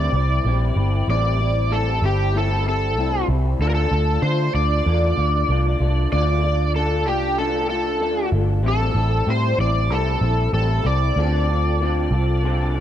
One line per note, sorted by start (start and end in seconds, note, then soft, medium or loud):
0.00 0.13 A2 medium
0.00 0.14 G3 medium
0.00 0.14 C4 medium
0.00 0.12 E4 medium
0.00 1.09 D5 medium
0.13 0.38 C2 loud
0.13 0.45 G3 soft
0.13 0.46 C4 soft
0.13 0.45 E4 medium
0.45 0.70 A#1 medium
0.45 0.77 A2 medium
0.45 0.77 G3 medium
0.45 0.77 C4 medium
0.45 0.76 E4 medium
0.76 1.02 G1 medium
0.76 1.08 G3 soft
0.76 1.09 C4 medium
0.76 1.08 E4 medium
1.08 1.98 A1 loud
1.08 1.40 A2 medium
1.08 1.40 G3 medium
1.08 1.40 C4 medium
1.08 1.39 E4 medium
1.08 1.74 D5 medium
1.40 1.70 G3 soft
1.40 1.72 C4 soft
1.40 1.71 E4 soft
1.71 2.02 A2 medium
1.71 2.03 G3 medium
1.71 2.02 C4 medium
1.71 2.01 E4 medium
1.71 2.04 A4 medium
2.02 2.97 G1 medium
2.02 2.33 G3 medium
2.02 2.34 C4 soft
2.02 2.34 E4 medium
2.02 2.36 G4 medium
2.34 2.65 A2 medium
2.34 2.66 G3 medium
2.34 2.65 C4 medium
2.34 2.65 E4 medium
2.34 2.65 A4 medium
2.66 2.97 G3 soft
2.66 2.97 C4 soft
2.66 2.97 E4 medium
2.66 3.26 A4 medium
2.97 3.22 C2 medium
2.97 3.28 A2 medium
2.97 3.29 G3 medium
2.97 3.29 C4 medium
2.97 3.27 E4 medium
3.28 3.54 C2 medium
3.28 3.61 G3 soft
3.28 3.61 C4 soft
3.28 3.60 E4 medium
3.59 3.85 D2 loud
3.59 3.92 D3 medium
3.59 3.91 A3 medium
3.59 3.91 D4 medium
3.59 3.90 F4 medium
3.59 3.68 A4 medium
3.69 3.74 A#4 medium
3.74 4.20 A4 medium
3.91 4.17 D2 medium
3.91 4.22 A3 soft
3.91 4.23 D4 soft
3.91 4.23 F4 medium
4.22 4.54 D3 medium
4.22 4.48 D3 loud
4.22 4.55 A3 medium
4.22 4.54 D4 medium
4.22 4.52 F4 medium
4.22 4.55 C5 medium
4.54 4.80 D2 medium
4.54 4.85 A3 medium
4.54 4.86 D4 soft
4.54 4.85 F4 medium
4.54 6.11 D5 loud
4.85 5.11 E2 loud
4.85 5.17 D3 medium
4.85 5.18 A3 medium
4.85 5.17 D4 medium
4.85 5.16 F4 medium
5.17 5.43 D2 medium
5.17 5.49 A3 soft
5.17 5.49 D4 soft
5.17 5.49 F4 medium
5.49 5.74 C2 medium
5.49 5.80 D3 medium
5.49 5.81 A3 medium
5.49 5.80 D4 medium
5.49 5.79 F4 medium
5.80 6.05 C2 medium
5.80 6.11 A3 soft
5.80 6.12 D4 medium
5.80 6.12 F4 medium
6.12 7.06 D2 medium
6.12 6.43 D3 medium
6.12 6.44 A3 medium
6.12 6.44 D4 medium
6.12 6.43 F4 loud
6.12 6.71 D5 medium
6.44 6.75 A3 soft
6.44 6.76 D4 soft
6.44 6.75 F4 medium
6.75 7.07 D3 medium
6.75 7.07 A3 medium
6.75 7.07 D4 medium
6.75 7.05 F4 medium
6.75 7.08 A4 medium
7.06 8.01 C2 medium
7.06 7.39 A3 soft
7.06 7.39 D4 medium
7.06 7.38 F4 soft
7.06 7.36 G4 medium
7.38 7.70 D3 medium
7.38 7.71 A3 medium
7.38 7.71 D4 medium
7.38 7.69 F4 medium
7.38 7.68 A4 medium
7.70 8.00 A3 soft
7.70 8.01 D4 medium
7.70 8.01 F4 medium
7.70 8.29 A4 medium
8.00 8.26 D2 medium
8.00 8.32 D3 medium
8.00 8.33 A3 medium
8.00 8.32 D4 medium
8.00 8.31 F4 medium
8.32 8.63 G1 medium
8.32 8.63 A3 soft
8.32 8.64 D4 soft
8.32 8.64 F4 soft
8.63 8.89 A1 loud
8.63 8.95 A2 medium
8.63 8.95 G3 medium
8.63 8.95 C4 medium
8.63 8.93 E4 medium
8.68 9.31 A4 medium
8.94 9.20 A1 loud
8.94 9.26 G3 soft
8.94 9.27 C4 medium
8.94 9.26 E4 soft
9.26 9.58 A2 medium
9.26 9.52 A2 loud
9.26 9.59 G3 medium
9.26 9.58 C4 medium
9.26 9.57 E4 medium
9.30 9.60 C5 medium
9.58 9.90 A1 medium
9.58 9.89 G3 soft
9.58 9.89 C4 soft
9.58 9.90 E4 medium
9.58 9.92 D5 loud
9.89 10.15 C2 loud
9.89 10.21 A2 medium
9.89 10.22 G3 medium
9.89 10.21 C4 medium
9.89 10.20 E4 medium
9.89 10.50 A4 medium
10.21 10.47 A#1 medium
10.21 10.51 G3 soft
10.21 10.52 C4 medium
10.21 10.53 E4 medium
10.52 10.78 A1 medium
10.52 10.84 A2 medium
10.52 10.85 G3 medium
10.52 10.83 C4 medium
10.52 10.82 E4 medium
10.52 10.86 A4 medium
10.83 11.10 C2 medium
10.83 11.17 G3 soft
10.83 11.16 C4 soft
10.83 11.16 E4 medium
10.83 12.80 D5 medium
11.16 12.07 D2 loud
11.16 11.48 D3 medium
11.16 11.49 C4 medium
11.16 11.49 F4 medium
11.16 11.49 A4 medium
11.50 11.80 C4 soft
11.50 11.81 F4 soft
11.50 11.81 A4 soft
11.80 12.12 D3 medium
11.80 12.12 C4 medium
11.80 12.12 F4 medium
11.80 12.11 A4 medium
12.11 12.80 C2 medium
12.11 12.44 F4 medium
12.11 12.43 A4 medium
12.15 12.43 C4 soft
12.43 12.75 D3 medium
12.43 12.75 C4 medium
12.43 12.74 F4 medium
12.43 12.73 A4 loud
12.74 12.80 F4 medium
12.74 12.80 A4 medium